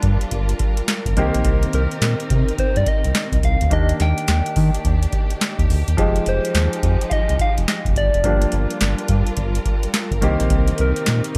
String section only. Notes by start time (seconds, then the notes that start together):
Already playing: G3 D4 F4 A#4
1.16 C3 C4 D#4
3.72 D#3 A#3 D4 G4
5.97 F3 G#3 D#4
8.23 G3 D4 F4 A#4
10.21 C3 C4 D#4